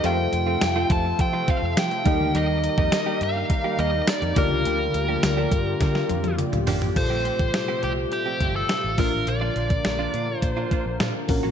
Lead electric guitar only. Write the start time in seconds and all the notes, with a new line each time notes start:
0.06 G5
0.92 A5
1.21 G5
1.50 F5
1.79 G5
2.36 D#5
3.23 F5
3.80 D#5
4.09 D5
4.38 A#4
6.97 C5
7.84 G4
8.13 G4
8.56 A4
8.99 A#4
9.28 D5
10.39 C5